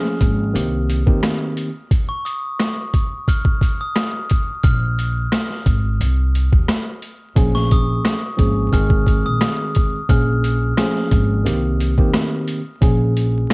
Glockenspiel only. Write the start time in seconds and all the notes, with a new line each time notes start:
Already playing: F6
2.09 C#6
2.25 D#6
3.28 F6
3.81 D#6
4.63 F6
7.55 C#6
7.72 D#6
8.73 F6
9.26 D#6
10.10 F6